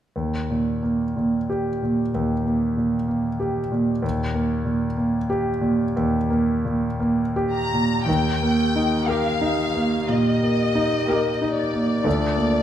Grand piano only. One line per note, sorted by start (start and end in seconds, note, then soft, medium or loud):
0.16 2.10 D#2 soft
0.50 1.04 A#2 soft
0.83 1.36 A#3 soft
1.16 1.68 A#2 soft
1.50 2.01 G4 soft
1.82 2.33 A#2 soft
2.15 4.00 D#2 soft
2.45 2.96 A#3 soft
2.77 3.27 A#2 soft
3.08 3.59 A#3 soft
3.40 3.91 G4 soft
3.72 4.22 A#2 soft
4.02 5.92 D#2 soft
4.34 4.85 A#3 soft
4.65 5.16 A#2 soft
4.97 5.49 A#3 soft
5.30 5.83 G4 soft
5.61 6.16 A#2 soft
5.97 8.03 D#2 soft
6.30 6.86 A#3 soft
6.65 7.22 A#2 soft
7.00 7.58 A#3 soft
7.36 7.94 G4 soft
7.73 8.08 A#2 soft
8.08 10.05 D#2 soft
8.42 8.95 A#3 soft
8.76 9.28 D#4 soft
9.09 9.62 A#4 soft
9.41 9.95 D#4 soft
9.74 10.29 A#3 soft
10.09 10.62 A#2 soft
10.43 10.96 A#3 soft
10.75 11.28 D#4 soft
11.08 11.60 A#4 soft
11.42 11.93 D#4 soft
11.73 12.05 A#3 soft
12.05 12.63 D2 soft
12.37 12.63 A#3 soft